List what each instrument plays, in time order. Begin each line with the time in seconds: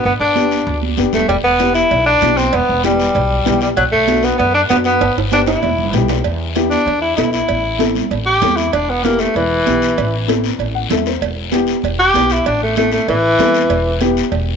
0.04 upright bass G1, tenor saxophone B3, high conga, long guiro
0.20 upright bass G1, tenor saxophone D4
0.36 upright piano B3 D4 G4, high conga, short guiro
0.51 short guiro
0.66 upright bass D2, high conga, long guiro
0.82 high conga
0.97 upright bass F#1, upright piano B3 D4 G4, high conga, short guiro
1.13 upright bass E1, tenor saxophone A3, low conga, short guiro
1.28 upright bass E1, tenor saxophone G3, cowbell, high conga, long guiro
1.43 upright bass E1, tenor saxophone B3
1.59 upright piano B3 E4 G4, cowbell, high conga, short guiro
1.75 tenor saxophone E4, short guiro
1.90 upright bass B1, cowbell, high conga, long guiro
2.06 tenor saxophone D4
2.21 upright bass B1, upright piano B3 E4 G4, cowbell, high conga, short guiro
2.37 tenor saxophone C4, short guiro
2.53 upright bass E1, tenor saxophone B3, cowbell, high conga, long guiro
2.69 upright bass E1
2.84 tenor saxophone G3, upright piano B3 E4 G4, cowbell, high conga, short guiro
3.00 short guiro
3.14 upright bass B1, cowbell, high conga, long guiro
3.45 upright bass B1, upright piano B3 E4 G4, cowbell, high conga, low conga, short guiro
3.61 tenor saxophone G3, short guiro
3.77 upright bass B1, tenor saxophone F#3, cowbell, high conga, long guiro
3.92 upright bass B1, tenor saxophone A3
4.08 upright piano B3 D4 F#4, cowbell, high conga, short guiro
4.23 tenor saxophone B3, short guiro
4.38 upright bass F#2, tenor saxophone B3, cowbell, high conga, long guiro
4.54 tenor saxophone D4
4.69 upright bass F#2, tenor saxophone B3, upright piano B3 D4 F#4, cowbell, high conga, low timbale, short guiro
4.84 tenor saxophone B3, short guiro
4.99 upright bass G1, cowbell, high conga, high timbale, long guiro
5.17 upright bass G1, high timbale
5.31 upright piano B3 D4 G4, tenor saxophone D4, cowbell, high conga, high timbale, short guiro
5.46 tenor saxophone E4, high timbale, short guiro
5.62 upright bass E1, cowbell, high conga, long guiro
5.79 low conga
5.93 upright bass B1, upright piano B3 E4 G4, cowbell, low conga, short guiro
6.08 low conga, low timbale, short guiro
6.24 upright bass E2, cowbell, high conga, long guiro
6.55 upright piano B3 E4 G4, cowbell, high conga, short guiro
6.70 tenor saxophone D4, short guiro
6.86 upright bass E2, cowbell, high conga, long guiro
7.01 tenor saxophone E4
7.16 upright bass B1, upright piano B3 E4 A4, tenor saxophone E4, cowbell, high conga, short guiro
7.32 tenor saxophone E4, short guiro
7.48 upright bass A1, cowbell, high conga, long guiro
7.79 upright piano C4 E4 A4, cowbell, high conga, short guiro
7.95 low conga, short guiro
8.11 upright bass A1, cowbell, high conga, long guiro
8.26 tenor saxophone G4
8.41 upright bass E2, upright piano C4 E4 A4, cowbell, high conga, low conga, low timbale, short guiro
8.56 tenor saxophone E4, short guiro
8.73 upright bass E1, tenor saxophone D4, cowbell, high conga, long guiro
8.90 tenor saxophone B3
9.04 tenor saxophone A#3, upright piano B3 E4 G4, cowbell, high conga, short guiro
9.19 tenor saxophone A3, short guiro
9.34 upright bass E1, tenor saxophone E3, cowbell, high conga, long guiro
9.66 upright bass B1, upright piano B3 E4 G4, cowbell, high conga, short guiro
9.82 short guiro
9.97 upright bass A1, cowbell, long guiro
10.28 upright piano C4 E4 A4, cowbell, high conga, short guiro
10.44 short guiro
10.59 upright bass A1, cowbell, high conga, long guiro
10.75 upright piano F#5
10.90 upright bass E2, upright piano C4 E4 A4 E5, cowbell, high conga, low conga, short guiro
11.06 upright piano C5, short guiro
11.21 upright bass E1, cowbell, high conga, long guiro
11.52 upright piano B3 E4 G4, cowbell, high conga, short guiro
11.67 short guiro
11.82 upright bass E1, cowbell, high conga, long guiro
11.99 tenor saxophone G4
12.14 upright bass B1, upright piano B3 E4 G4, cowbell, high conga, low timbale, short guiro
12.30 tenor saxophone E4, short guiro
12.45 upright bass A1, tenor saxophone D4, cowbell, high conga, long guiro
12.63 tenor saxophone A3
12.76 tenor saxophone A3, upright piano C4 E4 A4, cowbell, high conga, short guiro
12.92 tenor saxophone A3, short guiro
13.08 upright bass A1, tenor saxophone E3, cowbell, high conga, long guiro
13.38 upright bass E2, upright piano C4 E4 A4, cowbell, high conga, low conga, low timbale, short guiro
13.54 short guiro
13.70 upright bass E1, cowbell, high conga, long guiro
14.01 upright piano B3 E4 G4, cowbell, high conga, short guiro
14.17 short guiro
14.32 upright bass E1, cowbell, long guiro